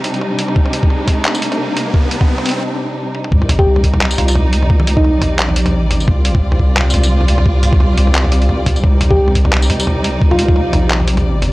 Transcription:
0.00 3.28 C3 medium
0.00 3.28 G3 medium
0.00 3.28 D4 medium
0.00 3.28 D#4 medium
0.00 riser medium
0.04 closed hi-hat medium
0.04 mid tom medium
0.14 closed hi-hat soft
0.21 mid tom medium
0.39 closed hi-hat medium
0.48 mid tom medium
0.56 kick loud
0.66 mid tom medium
0.73 closed hi-hat medium
0.83 kick loud
0.90 mid tom medium
1.08 kick medium
1.08 closed hi-hat medium
1.08 mid tom medium
1.25 clap loud
1.35 mid tom medium
1.35 tambourine medium
1.42 closed hi-hat medium
1.52 closed hi-hat soft
1.52 mid tom medium
1.77 closed hi-hat medium
1.77 mid tom medium
1.94 kick loud
1.94 mid tom medium
2.11 closed hi-hat medium
2.21 kick loud
2.21 mid tom soft
2.38 mid tom medium
2.46 closed hi-hat medium
2.49 closed hi-hat medium
2.51 closed hi-hat soft
3.15 high tom medium
3.24 mid tom medium
3.32 3.65 C2 loud
3.32 11.53 C3 medium
3.32 11.53 G3 medium
3.32 6.07 D#4 loud
3.32 11.53 D5 medium
3.32 kick loud
3.42 mid tom medium
3.49 closed hi-hat medium
3.49 mid tom medium
3.59 3.79 G4 loud
3.59 kick loud
3.67 4.17 C2 loud
3.76 mid tom medium
3.84 kick medium
3.84 closed hi-hat medium
3.94 mid tom medium
4.01 clap loud
4.11 tambourine medium
4.18 5.20 C2 loud
4.18 4.24 F4 medium
4.18 closed hi-hat medium
4.18 mid tom medium
4.28 4.33 F4 medium
4.28 closed hi-hat soft
4.28 tambourine medium
4.35 mid tom medium
4.53 closed hi-hat medium
4.63 mid tom medium
4.70 kick loud
4.80 mid tom medium
4.87 closed hi-hat medium
4.97 5.31 D#4 loud
4.97 kick loud
5.04 mid tom medium
5.22 5.82 A#1 loud
5.22 closed hi-hat medium
5.22 mid tom medium
5.39 clap loud
5.49 mid tom medium
5.56 closed hi-hat medium
5.66 closed hi-hat soft
5.66 mid tom medium
5.82 6.07 A1 loud
5.91 closed hi-hat medium
5.91 mid tom medium
6.00 tambourine soft
6.08 6.41 C2 loud
6.08 8.83 F4 medium
6.08 kick loud
6.08 mid tom medium
6.25 closed hi-hat medium
6.35 kick loud
6.35 mid tom medium
6.42 6.93 C2 loud
6.52 mid tom medium
6.59 kick medium
6.77 clap loud
6.77 mid tom medium
6.90 7.96 C2 loud
6.90 closed hi-hat medium
6.90 mid tom medium
6.90 tambourine medium
7.04 closed hi-hat soft
7.04 tambourine medium
7.21 mid tom soft
7.28 closed hi-hat medium
7.38 mid tom medium
7.46 kick loud
7.63 closed hi-hat medium
7.63 mid tom soft
7.73 kick loud
7.80 mid tom medium
7.97 8.48 C2 medium
7.97 closed hi-hat medium
8.07 mid tom soft
8.15 clap loud
8.24 mid tom medium
8.32 closed hi-hat medium
8.42 closed hi-hat soft
8.49 8.82 C2 loud
8.49 mid tom medium
8.66 kick medium
8.66 closed hi-hat medium
8.66 mid tom medium
8.76 tambourine soft
8.84 9.17 C2 loud
8.84 11.53 D#4 medium
8.84 kick loud
8.84 mid tom medium
9.01 closed hi-hat medium
9.01 mid tom medium
9.11 9.31 G4 loud
9.11 kick loud
9.18 9.69 C2 loud
9.28 mid tom medium
9.35 kick medium
9.35 closed hi-hat medium
9.45 mid tom medium
9.53 clap loud
9.62 tambourine medium
9.70 10.72 C2 loud
9.70 closed hi-hat medium
9.70 mid tom medium
9.80 closed hi-hat soft
9.80 tambourine medium
9.87 mid tom medium
10.04 closed hi-hat medium
10.22 kick loud
10.31 10.79 F4 loud
10.31 mid tom medium
10.39 closed hi-hat medium
10.49 kick loud
10.56 mid tom medium
10.73 11.53 A#1 loud
10.73 closed hi-hat medium
10.73 mid tom medium
10.90 clap loud
11.00 mid tom medium
11.08 closed hi-hat medium
11.17 closed hi-hat soft
11.17 mid tom medium
11.42 closed hi-hat medium
11.42 mid tom medium

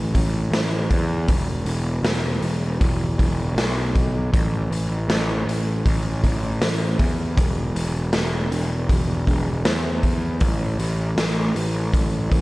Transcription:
0.00 0.12 A1 medium
0.15 0.50 A1 medium
0.15 kick medium
0.15 open hi-hat soft
0.52 0.87 A1 medium
0.52 snare loud
0.52 open hi-hat medium
0.90 1.30 E2 medium
0.90 kick medium
0.90 open hi-hat soft
1.28 1.64 E1 loud
1.28 kick medium
1.28 open hi-hat medium
1.66 2.01 E1 medium
1.66 open hi-hat soft
2.03 2.39 E1 medium
2.03 snare loud
2.03 open hi-hat medium
2.42 2.78 E1 medium
2.42 open hi-hat soft
2.80 3.16 E1 medium
2.80 kick loud
2.80 open hi-hat medium
3.19 3.54 E1 medium
3.19 kick medium
3.19 open hi-hat soft
3.56 4.29 B1 medium
3.56 snare medium
3.56 open hi-hat medium
3.95 kick medium
3.95 open hi-hat soft
4.33 4.68 A1 medium
4.33 kick loud
4.33 open hi-hat medium
4.70 5.06 A1 medium
4.70 open hi-hat soft
5.08 5.44 A1 medium
5.08 snare loud
5.08 open hi-hat medium
5.46 5.82 A1 medium
5.46 open hi-hat soft
5.85 6.21 A1 medium
5.85 kick medium
5.85 open hi-hat medium
6.23 6.59 A1 medium
6.23 kick medium
6.23 open hi-hat soft
6.62 6.97 A1 medium
6.62 snare loud
6.62 open hi-hat medium
6.99 7.35 E2 medium
6.99 kick medium
6.99 open hi-hat soft
7.37 7.72 E1 medium
7.37 kick loud
7.37 open hi-hat medium
7.75 8.10 E1 medium
7.75 open hi-hat soft
8.13 8.49 E1 medium
8.13 snare loud
8.13 open hi-hat medium
8.51 8.87 E1 medium
8.51 open hi-hat soft
8.89 9.24 E1 medium
8.89 kick medium
8.89 open hi-hat medium
9.27 9.62 E1 medium
9.27 kick medium
9.27 open hi-hat soft
9.65 10.38 E2 medium
9.65 snare loud
9.65 open hi-hat medium
10.03 kick medium
10.03 open hi-hat soft
10.40 10.77 A1 medium
10.40 kick medium
10.40 open hi-hat medium
10.79 11.14 A1 medium
10.79 open hi-hat soft
11.17 11.52 A1 medium
11.17 snare loud
11.17 open hi-hat medium
11.56 11.91 A1 medium
11.56 open hi-hat soft
11.94 12.29 A1 medium
11.94 kick medium
11.94 open hi-hat medium
12.31 12.41 A1 medium
12.31 kick medium
12.31 open hi-hat soft

